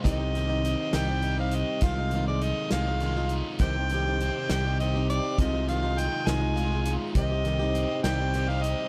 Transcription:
<<
  \new Staff \with { instrumentName = "Harmonica" } { \time 6/8 \key c \minor \tempo 4. = 68 ees''4. g''8. f''16 ees''8 | f''8. d''16 ees''8 f''4 r8 | g''4. g''8 ees''8 d''8 | ees''8 f''8 g''8 aes''4 r8 |
ees''4. g''8. f''16 ees''8 | }
  \new Staff \with { instrumentName = "Steel-string acoustic guitar" } { \time 6/8 \key c \minor <c ees c' ees' g'>16 <c' ees' g'>16 <ees c' ees' g'>16 <c' ees' g'>8. <c ees c' ees' g'>16 <c' ees' g'>16 <ees c' ees' g'>16 <c' ees' g'>8. | <c ees aes ees' f'>16 <aes ees' f'>16 <ees aes ees' f'>16 <aes ees' f'>8. <c ees aes ees' f'>16 <aes ees' f'>16 <ees aes ees' f'>16 <aes ees' f'>8. | <c ees c' ees' g'>16 <c' ees' g'>16 <ees c' ees' g'>16 <c' ees' g'>8. <c ees c' ees' g'>16 <c' ees' g'>16 <ees c' ees' g'>16 <c' ees' g'>8. | <c ees aes ees' f'>16 <aes ees' f'>16 <ees aes ees' f'>16 <aes ees' f'>8. <c ees aes ees' f'>16 <aes ees' f'>16 <ees aes ees' f'>16 <aes ees' f'>8. |
<c ees c' ees' g'>16 <c' ees' g'>16 <ees c' ees' g'>16 <c' ees' g'>8. <c ees c' ees' g'>16 <c' ees' g'>16 <ees c' ees' g'>16 <c' ees' g'>8. | }
  \new Staff \with { instrumentName = "Tonewheel organ" } { \time 6/8 \key c \minor r2. | r2. | <c' ees' g'>2. | <ees' f' aes'>2. |
<c' ees' g'>2. | }
  \new Staff \with { instrumentName = "Overdriven electric guitar" } { \time 6/8 \key c \minor c8 ees8 c'8 g8 g'8 c'8 | c8 ees8 ees'8 aes8 f'8 ees'8 | c8 ees8 c'8 g8 g'8 c'8 | c8 ees8 ees'8 aes8 f'8 ees'8 |
c8 ees8 c'8 g8 g'8 c'8 | }
  \new Staff \with { instrumentName = "Fingered electric bass" } { \clef bass \time 6/8 \key c \minor c,4. c,4. | c,4. c,4. | c,4. c,4. | c,4. c,4. |
c,4. c,4. | }
  \new DrumStaff \with { instrumentName = "Drums" } \drummode { \time 6/8 <hh bd>8 hh8 hh8 <hh sn>8 hh8 hh8 | <hh bd>8 hh8 hh8 <hh sn>8 hh8 hh8 | <hh bd>8 hh8 hh8 <hh sn>8 hh8 hh8 | <hh bd>8 hh8 hh8 <hh sn>8 hh8 hh8 |
<hh bd>8 hh8 hh8 <hh sn>8 hh8 hh8 | }
>>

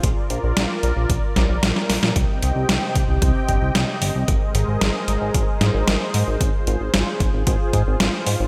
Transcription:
<<
  \new Staff \with { instrumentName = "Analog synth pad" } { \time 4/4 \key c \minor \tempo 4 = 113 <f' bes' d''>1 | <c c' g' ees'' g''>1 | <aes aes' bes' c''>1 | <f' aes'>1 | }
  \new Staff \with { instrumentName = "Analog synth bass" } { \clef bass \time 4/4 \key c \minor bes,,16 r16 bes,,16 bes,,16 bes,,16 r16 bes,,16 bes,,16 bes,,16 r16 bes,,16 bes,,16 bes,,16 r16 bes,,16 bes,,16 | c,16 r16 c,16 c,16 c,16 r16 c,16 c,16 c,16 r16 g,,16 c,16 c,16 r16 g,,16 c,16 | aes,,16 r16 aes,,16 aes,,16 aes,,16 r16 aes,,16 aes,,16 aes,,16 r16 aes,16 aes,,16 aes,,16 r16 aes,16 aes,,16 | aes,,16 r16 aes,,16 aes,,16 aes,,16 r16 aes,,16 aes,,16 aes,,16 r16 aes,16 aes,,16 aes,,16 r16 aes,16 aes,,16 | }
  \new DrumStaff \with { instrumentName = "Drums" } \drummode { \time 4/4 <hh bd>8 hh8 <hh sn>8 hh8 <hh bd>8 <hh bd sn>8 <hh sn>16 sn16 <hho sn>16 sn16 | <hh bd>8 hh8 <hh sn>8 <hh bd>8 <hh bd>8 <hh bd>8 <hh sn>8 hho8 | <hh bd>8 hh8 <hh sn>8 hh8 <hh bd>8 <hh sn>8 <hh sn>8 hho8 | <hh bd>8 hh8 <hh sn>8 <hh bd>8 <hh bd>8 <hh bd>8 <hh sn>8 hho8 | }
>>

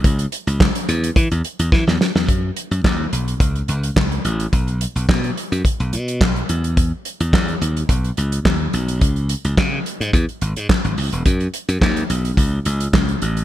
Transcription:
<<
  \new Staff \with { instrumentName = "Slap bass" } { \clef bass \time 4/4 \key fis \dorian \tempo 4 = 107 cis,8 r16 cis,8 r16 e,8 e16 e,16 r16 e,16 e16 e,16 r16 e,16 | fis,8 r16 fis,16 dis,8 b,,8 cis,8 cis,8 cis,8 a,,8 | b,,8. b,,16 b,8 r16 fis,16 r16 b,,16 b,8 b,,8 e,8~ | e,8 r16 e,16 e,8 dis,8 b,,8 cis,8 dis,8 b,,8 |
cis,8. cis,16 cis8 r16 gis,16 e,16 r16 gis,,16 gis,16 r16 gis,,16 cis,16 e,,16 | fis,8 r16 fis,16 dis,8 b,,8 cis,8 cis,8 cis,8 a,,8 | }
  \new DrumStaff \with { instrumentName = "Drums" } \drummode { \time 4/4 <hh bd>16 hh16 hh16 hh16 <hc bd sn>16 hh16 hh16 hh16 <hh bd>16 hh16 hh16 hh16 <bd sn>16 sn16 sn16 sn16 | <hh bd>8 hh16 hh16 <hc bd sn>8 hh16 hh16 <hh bd>16 hh16 hh16 hh16 <hc bd sn>16 hh16 hh16 hh16 | <hh bd>16 hh16 hh16 hh16 <hc bd sn>16 hh16 hh16 hh16 <hh bd>16 hh16 hh16 hh16 <hc bd sn>16 hh16 hh16 hh16 | <hh bd>8 hh16 hh16 <hc bd sn>16 hh16 hh16 hh16 <hh bd>16 hh16 hh16 hh16 <hc bd sn>8 hh16 hh16 |
<hh bd>16 hh16 hh16 hh16 <hc bd sn>8 hh16 hh16 <hh bd>16 hh16 hh16 hh16 <hc bd sn>16 hh16 hho16 hh16 | <hh bd>16 hh16 hh16 hh16 <hc bd sn>16 hh16 hh16 hh16 <hh bd>8 hh16 hh16 <hc bd sn>16 hh16 hh16 hh16 | }
>>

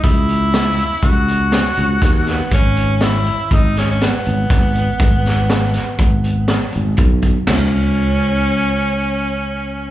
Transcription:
<<
  \new Staff \with { instrumentName = "Tenor saxophone" } { \time 5/4 \key gis \phrygian \tempo 4 = 121 e'2 fis'2~ fis'8 b8 | cis'4 e'4 dis'8 cis'16 cis'16 b2~ | b1 r4 | cis'1~ cis'4 | }
  \new Staff \with { instrumentName = "Fretless electric bass" } { \clef bass \time 5/4 \key gis \phrygian cis,2 cis,4. cis,8 dis,4 | gis,,2 gis,,4. gis,,8 gis,,4 | gis,,2 gis,,4. gis,,8 b,,4 | cis,1~ cis,4 | }
  \new DrumStaff \with { instrumentName = "Drums" } \drummode { \time 5/4 <hh bd>8 hh8 <hh sn>8 hh8 <hh bd>8 hh8 <hh sn>8 hh8 <hh bd sn>8 <hh sn>8 | <hh bd>8 hh8 <hh sn>8 hh8 <hh bd>8 <hh sn>8 <hh sn>8 hh8 <hh bd sn>8 hh8 | <hh bd>8 <hh sn>8 <hh sn>8 <hh sn>8 <hh bd>8 hh8 <hh sn>8 hh8 <hh bd>8 <hh bd>8 | <cymc sn tomfh>4 r4 r4 r4 r4 | }
>>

